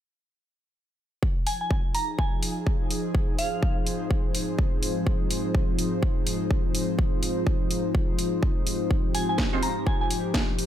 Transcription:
1.23 F3 G#3 F4 C5, kick
1.47 G#5, open hi-hat
1.54 D#4
1.61 G#5
1.71 kick
1.87 G#4
1.95 A#5, open hi-hat
2.19 G#5, kick
2.43 open hi-hat
2.62 C5
2.67 kick
2.91 open hi-hat
3.15 kick
3.39 F5, open hi-hat
3.63 kick
3.87 open hi-hat
4.11 kick
4.35 open hi-hat
4.59 kick
4.83 open hi-hat
5.07 kick
5.31 open hi-hat
5.55 kick
5.79 open hi-hat
6.03 kick
6.27 open hi-hat
6.51 kick
6.75 open hi-hat
6.99 kick
7.23 open hi-hat
7.47 kick
7.71 open hi-hat
7.95 kick
8.19 open hi-hat
8.43 kick
8.55 G4
8.67 open hi-hat
8.91 A#4, kick
9.15 G#5, open hi-hat
9.29 G#5
9.38 kick, snare
9.53 G#3 C4 F4 C5
9.63 A#5, open hi-hat
9.87 G#5, kick
10.01 G#5
10.11 open hi-hat
10.34 kick, snare
10.59 open hi-hat

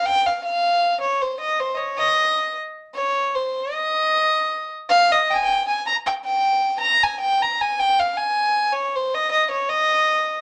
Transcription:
0.06 G5
0.26 F5
0.44 F5
1.01 C#5
1.22 C5
1.40 D#5
1.60 C5
1.75 C#5 D#5
1.98 D#5
2.95 C#5
3.35 C5
3.73 D#5
4.89 F5
5.12 D#5
5.31 G5 G#5
5.44 G5
5.68 G#5
5.87 A#5
6.06 G5
6.25 G5
6.80 A#5
7.04 G#5
7.21 G5
7.42 A#5
7.61 G#5
7.80 G5
8.00 F5
8.18 G#5
8.73 C#5
8.96 C5
9.14 D#5
9.32 D#5
9.51 C#5
9.70 D#5

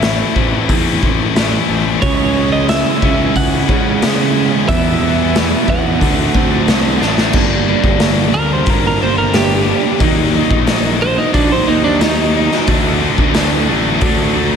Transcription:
Already playing: A1 A2 E3 A3 C4 E4 E5
0.02 snare, open hi-hat
0.35 A1 A2 E3 A3 C4 E4, kick
0.69 E2 E4, kick, open hi-hat
1.03 A1 C4, kick
1.35 A2 E3 A3 C4 E4, snare, open hi-hat
1.69 A1 A3
2.01 C#2 C#3 G#3 C#4 C#5, kick, open hi-hat
2.05 E4
2.36 G#3
2.52 D#5
2.68 E4 E5, snare, open hi-hat
3.02 C#2 C#3 G#3 C#4 E4, kick
3.36 C#2 E4 F#5, kick, open hi-hat
3.69 C#3 C#4, kick
4.01 C#3 G#3 C#4 E4, snare, open hi-hat
4.36 G#3
4.67 E2 B2 E3 G3 B3 E4 E5, kick, open hi-hat
4.72 E3
5.00 E2 G3
5.35 E4, snare, open hi-hat
5.67 E2 B2 E3 G3 B3 E4 F#5, kick
5.71 E2
5.99 D2 D3 F#3 A3 D4, kick, open hi-hat
6.34 D2 C4, kick
6.67 C2 D3, snare, open hi-hat
7.00 A1 D3 F#3 A3 D4, snare
7.18 snare
7.33 G1 G2 D3 G3 A#3 D4, kick, crash
7.67 G2 D3 G3 A#3 D4
7.84 G1 G3 A#3 D4, kick
8.00 G2 D3 G3 A#3 D4, snare, open hi-hat
8.33 D2 G2 D3 G3 A#3 D4 A#4, muted steel-string acoustic guitar stroke
8.49 G3 A#3 D4
8.53 C5
8.66 G1 G2 D3 G3 A#3 D4 A#4, kick, open hi-hat
8.82 G3 A#3 D4
8.87 A#4
9.00 G2 D3 G3 A#3 D4 C5
9.18 A#4
9.34 G2 D3 G3 A#3 D4 G4, snare, open hi-hat
9.50 G3 A#3 D4
9.67 G2 D3 G3 A#3 D4
9.84 G3 A#3 D4
10.00 D#2 D#3 F#3 A#3 D#4, kick, open hi-hat
10.33 D#3 F#3 A#3 D#4
10.50 A#1 F#3 A#3 D#4, kick
10.67 D#3 F#3 A#3 D#4, snare, open hi-hat
11.01 D#3 F#3 A#3 D#4 C5, muted steel-string acoustic guitar stroke
11.17 F#3 A#3 D#4
11.33 A#1 D#3 F#3 A#3 D4 D#4, kick, open hi-hat
11.51 F#3 A#3 D#4 C5
11.66 D#2 D#3 F#3 A#3 D#4
11.84 D4
12.00 D#3 F#3 A#3 D#4, snare, open hi-hat
12.18 F#3 A#3 D#4
12.33 D#3 F#3 A#3 D#4
12.52 F#3 A#3 D#4, snare
12.67 D2 D3 F#3 A3 D4, kick, open hi-hat
13.00 D3 F#3 A3 D4
13.18 D2, kick
13.34 D3 F#3 A3 D4, snare, open hi-hat
13.67 A1 D3 F#3 A3 D4
14.01 D2 D3 F#3 A3 D4, kick, open hi-hat
14.34 D3 F#3 A3 D4

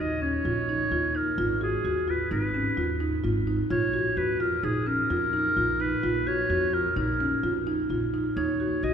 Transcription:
Already playing: D#2
0.00 D#4 D#5
0.22 C#4 C#5
0.45 A#1 F4
0.69 D#4
0.91 D#2 F4
1.15 D#4 A#4
1.38 G#1 F4
1.61 F#4 G#4
1.84 D#2 F#4
2.08 F4 B4
2.31 G#1 D#4 B4
2.54 C#4
2.77 D#2 F4
3.00 D#4
3.24 G#1 F4
3.47 D#4
3.70 A#1 F4 C#5
3.93 F#4
4.17 F2 F#4 B4
4.40 F4 A#4
4.63 A#1 D#4 G#4
4.86 C#4 A#4
5.10 F2 F4
5.33 D#4
5.56 A#1 F4
5.80 D#4 B4
6.03 A#1 F4
6.27 F#4 C#5
6.50 F2 F#4
6.73 F4 A#4
6.96 A#1 D#4 A#4
7.20 C#4
7.43 F2 F4
7.67 D#4
7.89 A#1 F4
8.14 D#4
8.36 D#2 D#4 C#5
8.60 F#4
8.83 A#1 F#4 D#5

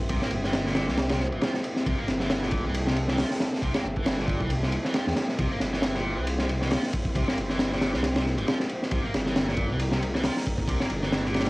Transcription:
Already playing: A#3 C4 E4 G4 C5
0.09 C2 C3, kick, ride
0.22 A#3, snare
0.31 G1, ride
0.44 E3, snare
0.53 snare, ride
0.66 A#2, snare
0.75 snare, ride
0.88 C2 E3, snare
0.97 snare, ride
1.09 C3, snare, ride
1.20 snare
1.32 G1 E3, ride
1.41 F3, snare, ride
1.54 snare
1.64 ride
1.76 snare
1.86 C2 C3 A4, kick, ride
1.98 A#3
2.08 G1, snare, ride
2.20 E3, snare
2.30 snare, ride
2.42 A#2, snare
2.51 kick, ride
2.64 C2 E3
2.74 ride
2.86 C3, snare
2.96 ride
3.08 E3, snare
3.18 F3, snare, open hi-hat
3.30 snare
3.40 snare, ride
3.53 snare
3.62 C2 C3, kick, ride
3.74 A#3, snare, ride
3.84 G1, snare
3.96 E3, kick, ride
4.06 snare, ride
4.19 A#2, snare
4.28 kick, ride
4.41 C2 E3, kick
4.50 ride
4.63 C3, snare
4.72 ride
4.85 E3, snare
4.94 F3, snare, ride
5.07 E2, snare
5.17 snare, ride
5.29 snare
5.39 C2 C3 C5, kick, ride
5.51 A#3
5.60 G1, snare, ride
5.73 E3, snare
5.82 snare, ride
5.95 A#2, snare
6.17 C2 E3
6.27 ride
6.39 C3, snare
6.49 ride
6.62 E3, snare
6.71 F3, snare, open hi-hat
6.83 snare
6.93 kick, ride
7.05 kick
7.15 C2 C3, kick, ride
7.28 A#3, snare
7.37 G1, ride
7.49 E3, snare
7.59 snare, ride
7.72 A#2, snare
7.81 snare, ride
7.93 C2 E3, snare
8.03 snare, ride
8.16 C3, snare, ride
8.26 snare
8.38 G1 E3, ride
8.47 F3, snare, ride
8.60 snare
8.69 ride
8.82 snare
8.91 C2 C3 A#4, kick, ride
9.04 A#3
9.14 G1, snare, ride
9.26 E3, snare
9.36 snare, ride
9.48 A#2, snare
9.57 kick, ride
9.70 C2 E3
9.80 ride
9.92 C3, snare
10.02 ride
10.14 E3, snare
10.23 F3, snare, open hi-hat
10.37 snare
10.46 kick, ride
10.58 kick
10.68 C2 C3, kick, ride
10.80 A#3, snare
10.90 G1, ride
11.03 E3, snare
11.12 snare, ride
11.25 A#2, snare
11.34 snare, ride
11.40 snare, ride
11.46 ride

